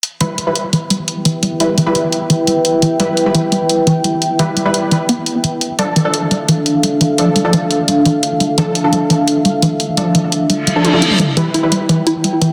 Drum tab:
HH |x-x-x-x-x-x-x-x-|x-x-x-x-x-x-x-x-|x-x-x-x-x-x-x-x-|x-x-x-x-x-x-x-x-|
T1 |----------------|----------------|----------------|----------------|
T2 |----------------|----------------|----------------|----------------|

HH |x-x-x-x-x-x-x-x-|x-x-x-x-x-x-x-x-|x-x-x-x-x-x-x-x-|x-x-x-x-x-x-x-x-|
T1 |----------------|----------------|----------------|------------oo--|
T2 |----------------|----------------|----------------|---------------o|

HH |x-x-x-x-x-x-x-x-|
T1 |----------------|
T2 |----------------|